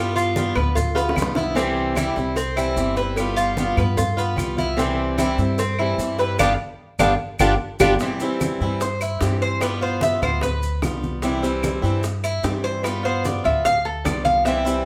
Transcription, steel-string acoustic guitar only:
Already playing: G3 B3
0.00 F4
0.36 G3 B3 F4
0.56 B3 F4
0.77 muted steel-string acoustic guitar stroke
0.95 B3 F4
1.16 G3 B3 F4
1.35 B3 F4
1.55 C3 E3 G3 C4 E4
1.95 C3 E3 G3 C4 E4
2.16 G3 C4 E4
2.36 muted steel-string acoustic guitar stroke
2.56 E3 G3 C4 E4
2.76 E3 G3 C4 E4
2.97 G3 C4 E4
3.17 G3 B3 F4
3.57 G3 B3 F4
3.77 B3 F4
3.97 muted steel-string acoustic guitar stroke
4.17 B3 F4
4.36 G3 B3 F4
4.57 B3 F4
4.77 C3 E3 G3 C4 E4
5.18 C3 E3 G3 C4 E4
5.39 G3 C4 E4
5.59 muted steel-string acoustic guitar stroke
5.79 E3 G3 C4 E4
5.99 E3 G3 C4 E4
6.19 G3 C4 E4
6.40 G3 B3 D4
6.99 G3 B3 D4
7.40 G3 B3 D4
7.81 G3 B3 D4
8.01 C3 E3 G3 C4 E4
8.21 E3 G3 C4 E4
8.62 E3 G3 C4 E4
8.83 muted steel-string acoustic guitar stroke
9.22 E3 G3 C4 E4
9.61 G3 B3 F4
9.81 B3 F4
10.22 B3 F4
10.43 muted steel-string acoustic guitar stroke
10.82 G3 B3 F4
11.22 C3 E3 G3 C4 E4
11.42 E3 G3 C4 E4
11.82 E3 G3 C4 E4
12.03 muted steel-string acoustic guitar stroke
12.43 E3 G3 C4 E4
12.83 G3 B3 F4
13.03 B3 F4
13.44 B3 F4
13.65 muted steel-string acoustic guitar stroke
14.04 G3 B3 F4
14.45 C3 E3 G3 C4 E4
14.65 E3 G3 C4 E4

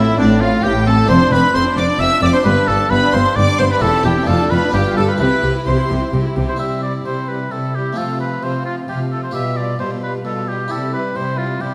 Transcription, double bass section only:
Already playing: A1
0.18 A1
0.64 A1
1.09 F1
1.31 F1
1.54 F1
1.77 F1
2.00 F1
2.22 F1
2.45 G1
2.68 G1
2.91 G1
3.14 G1
3.37 G1
3.60 G1
3.82 E1
4.04 E1
4.27 F1
4.51 F1
4.73 G1
4.96 G1
5.20 C2
5.43 C2
5.66 C2
5.90 C2
6.13 C2
6.36 C2

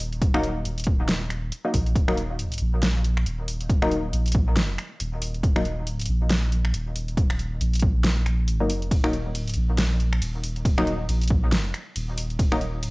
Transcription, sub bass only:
Already playing: D#1
0.65 D#1
1.74 A#1
1.96 D#1
2.61 A#1
3.26 D#1
4.13 A#1
5.00 D#1
5.43 D#1
5.88 D1
6.09 A#1
6.74 D#1
7.61 A#1
8.91 D#1
9.36 D1
9.56 A#1
10.22 D#1
11.09 A#1
11.96 D#1
12.39 D#1

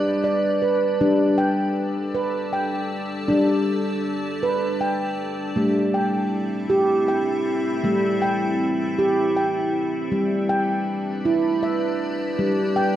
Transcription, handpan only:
Already playing: G3 B4 D5
0.24 D5
0.62 B4
1.01 G3 D4
1.38 G5
2.15 B4
2.53 G5
3.28 G3 D4
4.43 B4
4.81 G5
5.56 G3 A3
5.94 G5
6.70 G4
7.08 G5
7.84 G3 A3
8.22 G5
8.99 G4
9.37 G5
10.11 G3
10.49 G5
11.25 E4
11.63 E5
12.39 G3
12.76 G5

